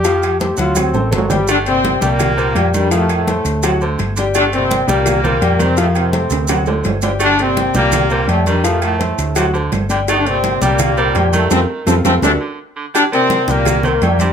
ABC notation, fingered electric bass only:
X:1
M:4/4
L:1/8
Q:1/4=168
K:Gm
V:1 name="Fingered electric bass" clef=bass
F,,3 D,,2 A,,, G,,,2- | G,,,3 C,,3 F,,2- | F,,3 D,,3 G,,,2- | G,,,3 C,,3 F,,2- |
F,,3 D,,3 G,,,2- | G,,,3 C,,3 F,,2- | F,,3 D,,3 G,,,2- | G,,,3 C,,3 F,,2 |
F,, z F,, F,, D,, z3 | z3 C,,3 F,,2 |]